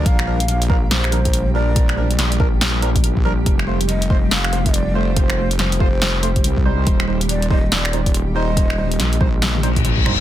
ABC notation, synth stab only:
X:1
M:4/4
L:1/8
Q:"Swing 16ths" 1/4=141
K:Fmix
V:1 name="Synth stab"
[F,DB] [F,DB] z [F,DB] z [F,DB] z [F,DB]- | [F,DB] [F,DB] z [F,DB] z [F,DB] z [F,DB] | z [A,Fc] z [A,Fc] z [A,Fc] z [A,Fc]- | [A,Fc] [A,Fc] z [A,Fc] z [A,Fc] z [G,Ec]- |
[G,Ec] [G,Ec] z [G,Ec] z [G,Ec] z [G,Ec]- | [G,Ec] [G,Ec] z [G,Ec] z [G,Ec] z [G,Ec] |]